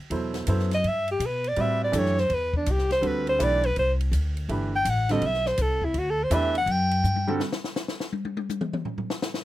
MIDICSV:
0, 0, Header, 1, 5, 480
1, 0, Start_track
1, 0, Tempo, 364520
1, 147, Time_signature, 4, 2, 24, 8
1, 12431, End_track
2, 0, Start_track
2, 0, Title_t, "Alto saxophone"
2, 0, Program_c, 0, 65
2, 980, Note_on_c, 0, 75, 100
2, 1160, Note_on_c, 0, 76, 112
2, 1179, Note_off_c, 0, 75, 0
2, 1449, Note_off_c, 0, 76, 0
2, 1467, Note_on_c, 0, 67, 82
2, 1658, Note_on_c, 0, 71, 85
2, 1678, Note_off_c, 0, 67, 0
2, 1952, Note_on_c, 0, 74, 98
2, 1972, Note_off_c, 0, 71, 0
2, 2116, Note_on_c, 0, 76, 100
2, 2136, Note_off_c, 0, 74, 0
2, 2408, Note_off_c, 0, 76, 0
2, 2423, Note_on_c, 0, 74, 97
2, 2612, Note_on_c, 0, 73, 93
2, 2632, Note_off_c, 0, 74, 0
2, 2893, Note_on_c, 0, 72, 101
2, 2912, Note_off_c, 0, 73, 0
2, 3087, Note_on_c, 0, 71, 90
2, 3106, Note_off_c, 0, 72, 0
2, 3373, Note_off_c, 0, 71, 0
2, 3383, Note_on_c, 0, 62, 76
2, 3571, Note_on_c, 0, 67, 83
2, 3591, Note_off_c, 0, 62, 0
2, 3840, Note_off_c, 0, 67, 0
2, 3848, Note_on_c, 0, 72, 105
2, 4045, Note_on_c, 0, 71, 87
2, 4065, Note_off_c, 0, 72, 0
2, 4327, Note_off_c, 0, 71, 0
2, 4335, Note_on_c, 0, 72, 111
2, 4525, Note_on_c, 0, 74, 113
2, 4545, Note_off_c, 0, 72, 0
2, 4814, Note_on_c, 0, 71, 100
2, 4834, Note_off_c, 0, 74, 0
2, 4965, Note_off_c, 0, 71, 0
2, 4994, Note_on_c, 0, 72, 94
2, 5169, Note_off_c, 0, 72, 0
2, 6262, Note_on_c, 0, 79, 106
2, 6448, Note_on_c, 0, 78, 91
2, 6468, Note_off_c, 0, 79, 0
2, 6740, Note_on_c, 0, 75, 93
2, 6760, Note_off_c, 0, 78, 0
2, 6933, Note_on_c, 0, 76, 103
2, 6953, Note_off_c, 0, 75, 0
2, 7201, Note_on_c, 0, 72, 98
2, 7221, Note_off_c, 0, 76, 0
2, 7400, Note_on_c, 0, 69, 83
2, 7420, Note_off_c, 0, 72, 0
2, 7700, Note_on_c, 0, 64, 77
2, 7720, Note_off_c, 0, 69, 0
2, 7884, Note_on_c, 0, 66, 85
2, 7904, Note_off_c, 0, 64, 0
2, 8039, Note_on_c, 0, 69, 89
2, 8059, Note_off_c, 0, 66, 0
2, 8212, Note_on_c, 0, 72, 89
2, 8232, Note_off_c, 0, 69, 0
2, 8352, Note_on_c, 0, 76, 102
2, 8371, Note_off_c, 0, 72, 0
2, 8643, Note_off_c, 0, 76, 0
2, 8661, Note_on_c, 0, 78, 100
2, 8844, Note_on_c, 0, 79, 92
2, 8864, Note_off_c, 0, 78, 0
2, 9692, Note_off_c, 0, 79, 0
2, 12431, End_track
3, 0, Start_track
3, 0, Title_t, "Grand piano"
3, 0, Program_c, 1, 0
3, 133, Note_on_c, 1, 54, 52
3, 141, Note_on_c, 1, 47, 52
3, 146, Note_on_c, 1, 64, 51
3, 151, Note_on_c, 1, 69, 51
3, 159, Note_on_c, 1, 72, 66
3, 601, Note_off_c, 1, 54, 0
3, 608, Note_off_c, 1, 47, 0
3, 611, Note_off_c, 1, 64, 0
3, 613, Note_off_c, 1, 69, 0
3, 617, Note_off_c, 1, 72, 0
3, 621, Note_on_c, 1, 54, 60
3, 627, Note_on_c, 1, 59, 61
3, 633, Note_on_c, 1, 69, 59
3, 635, Note_on_c, 1, 64, 62
3, 648, Note_on_c, 1, 72, 70
3, 908, Note_off_c, 1, 54, 0
3, 911, Note_off_c, 1, 59, 0
3, 914, Note_off_c, 1, 69, 0
3, 915, Note_off_c, 1, 64, 0
3, 921, Note_off_c, 1, 72, 0
3, 2063, Note_on_c, 1, 55, 59
3, 2073, Note_on_c, 1, 60, 53
3, 2077, Note_on_c, 1, 66, 47
3, 2084, Note_on_c, 1, 71, 50
3, 2091, Note_on_c, 1, 74, 59
3, 2529, Note_on_c, 1, 52, 68
3, 2530, Note_off_c, 1, 55, 0
3, 2534, Note_on_c, 1, 57, 59
3, 2536, Note_off_c, 1, 60, 0
3, 2537, Note_off_c, 1, 66, 0
3, 2541, Note_off_c, 1, 71, 0
3, 2541, Note_on_c, 1, 62, 59
3, 2544, Note_off_c, 1, 74, 0
3, 2545, Note_on_c, 1, 67, 61
3, 2554, Note_on_c, 1, 69, 72
3, 2823, Note_off_c, 1, 52, 0
3, 2826, Note_off_c, 1, 57, 0
3, 2829, Note_off_c, 1, 62, 0
3, 2831, Note_off_c, 1, 67, 0
3, 2835, Note_off_c, 1, 69, 0
3, 3967, Note_on_c, 1, 50, 59
3, 3967, Note_on_c, 1, 55, 56
3, 3977, Note_on_c, 1, 60, 55
3, 3984, Note_on_c, 1, 66, 59
3, 3985, Note_on_c, 1, 69, 60
3, 4443, Note_off_c, 1, 50, 0
3, 4443, Note_off_c, 1, 55, 0
3, 4447, Note_off_c, 1, 60, 0
3, 4451, Note_off_c, 1, 66, 0
3, 4451, Note_off_c, 1, 69, 0
3, 4462, Note_on_c, 1, 52, 65
3, 4468, Note_on_c, 1, 57, 55
3, 4469, Note_on_c, 1, 62, 61
3, 4476, Note_on_c, 1, 67, 53
3, 4488, Note_on_c, 1, 71, 73
3, 4749, Note_off_c, 1, 52, 0
3, 4752, Note_off_c, 1, 57, 0
3, 4753, Note_off_c, 1, 62, 0
3, 4756, Note_off_c, 1, 67, 0
3, 4762, Note_off_c, 1, 71, 0
3, 5914, Note_on_c, 1, 52, 51
3, 5924, Note_on_c, 1, 62, 49
3, 5927, Note_on_c, 1, 57, 50
3, 5928, Note_on_c, 1, 67, 54
3, 5938, Note_on_c, 1, 71, 65
3, 6194, Note_off_c, 1, 52, 0
3, 6200, Note_off_c, 1, 62, 0
3, 6201, Note_off_c, 1, 57, 0
3, 6202, Note_off_c, 1, 67, 0
3, 6207, Note_off_c, 1, 71, 0
3, 6709, Note_on_c, 1, 50, 68
3, 6722, Note_on_c, 1, 55, 68
3, 6725, Note_on_c, 1, 60, 66
3, 6732, Note_on_c, 1, 66, 64
3, 6737, Note_on_c, 1, 69, 78
3, 6855, Note_off_c, 1, 50, 0
3, 6862, Note_off_c, 1, 55, 0
3, 6863, Note_off_c, 1, 60, 0
3, 6867, Note_off_c, 1, 66, 0
3, 6869, Note_off_c, 1, 69, 0
3, 8311, Note_on_c, 1, 52, 80
3, 8316, Note_on_c, 1, 57, 69
3, 8324, Note_on_c, 1, 62, 68
3, 8332, Note_on_c, 1, 67, 64
3, 8333, Note_on_c, 1, 71, 86
3, 8592, Note_off_c, 1, 52, 0
3, 8594, Note_off_c, 1, 57, 0
3, 8598, Note_off_c, 1, 62, 0
3, 8602, Note_off_c, 1, 67, 0
3, 8602, Note_off_c, 1, 71, 0
3, 9578, Note_on_c, 1, 50, 74
3, 9579, Note_on_c, 1, 55, 73
3, 9589, Note_on_c, 1, 60, 64
3, 9594, Note_on_c, 1, 66, 72
3, 9598, Note_on_c, 1, 69, 87
3, 9728, Note_off_c, 1, 50, 0
3, 9728, Note_off_c, 1, 55, 0
3, 9734, Note_off_c, 1, 60, 0
3, 9736, Note_off_c, 1, 66, 0
3, 9738, Note_off_c, 1, 69, 0
3, 12431, End_track
4, 0, Start_track
4, 0, Title_t, "Upright bass"
4, 0, Program_c, 2, 32
4, 135, Note_on_c, 2, 40, 84
4, 607, Note_off_c, 2, 40, 0
4, 625, Note_on_c, 2, 42, 92
4, 1093, Note_off_c, 2, 42, 0
4, 1104, Note_on_c, 2, 43, 83
4, 1567, Note_off_c, 2, 43, 0
4, 1575, Note_on_c, 2, 47, 85
4, 2048, Note_off_c, 2, 47, 0
4, 2063, Note_on_c, 2, 45, 85
4, 2532, Note_off_c, 2, 45, 0
4, 2543, Note_on_c, 2, 42, 94
4, 3013, Note_off_c, 2, 42, 0
4, 3024, Note_on_c, 2, 40, 93
4, 3493, Note_off_c, 2, 40, 0
4, 3511, Note_on_c, 2, 36, 93
4, 3973, Note_off_c, 2, 36, 0
4, 3980, Note_on_c, 2, 38, 86
4, 4451, Note_off_c, 2, 38, 0
4, 4480, Note_on_c, 2, 35, 96
4, 4941, Note_off_c, 2, 35, 0
4, 4960, Note_on_c, 2, 36, 88
4, 5412, Note_off_c, 2, 36, 0
4, 5420, Note_on_c, 2, 38, 91
4, 5890, Note_off_c, 2, 38, 0
4, 5909, Note_on_c, 2, 31, 89
4, 6375, Note_off_c, 2, 31, 0
4, 6387, Note_on_c, 2, 33, 86
4, 6853, Note_off_c, 2, 33, 0
4, 6871, Note_on_c, 2, 35, 89
4, 7335, Note_off_c, 2, 35, 0
4, 7346, Note_on_c, 2, 36, 98
4, 7812, Note_off_c, 2, 36, 0
4, 7822, Note_on_c, 2, 38, 88
4, 8290, Note_off_c, 2, 38, 0
4, 8302, Note_on_c, 2, 40, 101
4, 8764, Note_off_c, 2, 40, 0
4, 8771, Note_on_c, 2, 42, 101
4, 9244, Note_off_c, 2, 42, 0
4, 9265, Note_on_c, 2, 43, 86
4, 9730, Note_off_c, 2, 43, 0
4, 12431, End_track
5, 0, Start_track
5, 0, Title_t, "Drums"
5, 140, Note_on_c, 9, 51, 65
5, 271, Note_off_c, 9, 51, 0
5, 448, Note_on_c, 9, 38, 52
5, 448, Note_on_c, 9, 51, 46
5, 580, Note_off_c, 9, 38, 0
5, 580, Note_off_c, 9, 51, 0
5, 614, Note_on_c, 9, 44, 59
5, 614, Note_on_c, 9, 51, 79
5, 746, Note_off_c, 9, 44, 0
5, 746, Note_off_c, 9, 51, 0
5, 782, Note_on_c, 9, 38, 27
5, 914, Note_off_c, 9, 38, 0
5, 938, Note_on_c, 9, 51, 52
5, 943, Note_on_c, 9, 38, 49
5, 1070, Note_off_c, 9, 51, 0
5, 1074, Note_off_c, 9, 38, 0
5, 1107, Note_on_c, 9, 51, 56
5, 1239, Note_off_c, 9, 51, 0
5, 1418, Note_on_c, 9, 51, 52
5, 1550, Note_off_c, 9, 51, 0
5, 1583, Note_on_c, 9, 44, 58
5, 1583, Note_on_c, 9, 51, 78
5, 1715, Note_off_c, 9, 44, 0
5, 1715, Note_off_c, 9, 51, 0
5, 1898, Note_on_c, 9, 51, 47
5, 2029, Note_off_c, 9, 51, 0
5, 2058, Note_on_c, 9, 51, 62
5, 2189, Note_off_c, 9, 51, 0
5, 2544, Note_on_c, 9, 44, 64
5, 2544, Note_on_c, 9, 51, 82
5, 2675, Note_off_c, 9, 44, 0
5, 2675, Note_off_c, 9, 51, 0
5, 2707, Note_on_c, 9, 38, 28
5, 2838, Note_off_c, 9, 38, 0
5, 2866, Note_on_c, 9, 38, 44
5, 2998, Note_off_c, 9, 38, 0
5, 3024, Note_on_c, 9, 51, 50
5, 3156, Note_off_c, 9, 51, 0
5, 3339, Note_on_c, 9, 36, 66
5, 3471, Note_off_c, 9, 36, 0
5, 3507, Note_on_c, 9, 44, 56
5, 3507, Note_on_c, 9, 51, 75
5, 3638, Note_off_c, 9, 44, 0
5, 3638, Note_off_c, 9, 51, 0
5, 3667, Note_on_c, 9, 38, 29
5, 3799, Note_off_c, 9, 38, 0
5, 3826, Note_on_c, 9, 51, 49
5, 3830, Note_on_c, 9, 38, 45
5, 3958, Note_off_c, 9, 51, 0
5, 3961, Note_off_c, 9, 38, 0
5, 3989, Note_on_c, 9, 51, 57
5, 4121, Note_off_c, 9, 51, 0
5, 4306, Note_on_c, 9, 51, 47
5, 4438, Note_off_c, 9, 51, 0
5, 4476, Note_on_c, 9, 44, 68
5, 4476, Note_on_c, 9, 51, 82
5, 4608, Note_off_c, 9, 44, 0
5, 4608, Note_off_c, 9, 51, 0
5, 4786, Note_on_c, 9, 51, 50
5, 4918, Note_off_c, 9, 51, 0
5, 4952, Note_on_c, 9, 51, 57
5, 5083, Note_off_c, 9, 51, 0
5, 5274, Note_on_c, 9, 51, 48
5, 5406, Note_off_c, 9, 51, 0
5, 5436, Note_on_c, 9, 44, 58
5, 5436, Note_on_c, 9, 51, 76
5, 5567, Note_off_c, 9, 44, 0
5, 5567, Note_off_c, 9, 51, 0
5, 5751, Note_on_c, 9, 51, 49
5, 5883, Note_off_c, 9, 51, 0
5, 5916, Note_on_c, 9, 51, 59
5, 6048, Note_off_c, 9, 51, 0
5, 6390, Note_on_c, 9, 44, 74
5, 6390, Note_on_c, 9, 51, 80
5, 6521, Note_off_c, 9, 44, 0
5, 6521, Note_off_c, 9, 51, 0
5, 6704, Note_on_c, 9, 38, 36
5, 6704, Note_on_c, 9, 51, 51
5, 6836, Note_off_c, 9, 38, 0
5, 6836, Note_off_c, 9, 51, 0
5, 6868, Note_on_c, 9, 51, 60
5, 7000, Note_off_c, 9, 51, 0
5, 7030, Note_on_c, 9, 38, 27
5, 7162, Note_off_c, 9, 38, 0
5, 7187, Note_on_c, 9, 38, 49
5, 7319, Note_off_c, 9, 38, 0
5, 7341, Note_on_c, 9, 44, 56
5, 7341, Note_on_c, 9, 51, 81
5, 7473, Note_off_c, 9, 44, 0
5, 7473, Note_off_c, 9, 51, 0
5, 7659, Note_on_c, 9, 36, 47
5, 7791, Note_off_c, 9, 36, 0
5, 7823, Note_on_c, 9, 51, 61
5, 7954, Note_off_c, 9, 51, 0
5, 8305, Note_on_c, 9, 44, 73
5, 8305, Note_on_c, 9, 51, 77
5, 8437, Note_off_c, 9, 44, 0
5, 8437, Note_off_c, 9, 51, 0
5, 8625, Note_on_c, 9, 51, 53
5, 8757, Note_off_c, 9, 51, 0
5, 8786, Note_on_c, 9, 51, 61
5, 8918, Note_off_c, 9, 51, 0
5, 9103, Note_on_c, 9, 51, 54
5, 9234, Note_off_c, 9, 51, 0
5, 9272, Note_on_c, 9, 44, 65
5, 9272, Note_on_c, 9, 48, 54
5, 9404, Note_off_c, 9, 44, 0
5, 9404, Note_off_c, 9, 48, 0
5, 9427, Note_on_c, 9, 48, 66
5, 9559, Note_off_c, 9, 48, 0
5, 9588, Note_on_c, 9, 48, 98
5, 9719, Note_off_c, 9, 48, 0
5, 9743, Note_on_c, 9, 38, 92
5, 9875, Note_off_c, 9, 38, 0
5, 9909, Note_on_c, 9, 38, 94
5, 10041, Note_off_c, 9, 38, 0
5, 10065, Note_on_c, 9, 38, 82
5, 10197, Note_off_c, 9, 38, 0
5, 10221, Note_on_c, 9, 38, 102
5, 10221, Note_on_c, 9, 44, 63
5, 10353, Note_off_c, 9, 38, 0
5, 10353, Note_off_c, 9, 44, 0
5, 10381, Note_on_c, 9, 38, 90
5, 10513, Note_off_c, 9, 38, 0
5, 10540, Note_on_c, 9, 38, 92
5, 10671, Note_off_c, 9, 38, 0
5, 10699, Note_on_c, 9, 48, 82
5, 10831, Note_off_c, 9, 48, 0
5, 10863, Note_on_c, 9, 48, 89
5, 10994, Note_off_c, 9, 48, 0
5, 11020, Note_on_c, 9, 48, 96
5, 11152, Note_off_c, 9, 48, 0
5, 11187, Note_on_c, 9, 44, 57
5, 11187, Note_on_c, 9, 48, 97
5, 11319, Note_off_c, 9, 44, 0
5, 11319, Note_off_c, 9, 48, 0
5, 11337, Note_on_c, 9, 47, 89
5, 11468, Note_off_c, 9, 47, 0
5, 11501, Note_on_c, 9, 47, 96
5, 11632, Note_off_c, 9, 47, 0
5, 11655, Note_on_c, 9, 43, 83
5, 11787, Note_off_c, 9, 43, 0
5, 11823, Note_on_c, 9, 43, 88
5, 11954, Note_off_c, 9, 43, 0
5, 11985, Note_on_c, 9, 38, 86
5, 12117, Note_off_c, 9, 38, 0
5, 12146, Note_on_c, 9, 38, 99
5, 12146, Note_on_c, 9, 44, 60
5, 12278, Note_off_c, 9, 38, 0
5, 12278, Note_off_c, 9, 44, 0
5, 12301, Note_on_c, 9, 38, 96
5, 12431, Note_off_c, 9, 38, 0
5, 12431, End_track
0, 0, End_of_file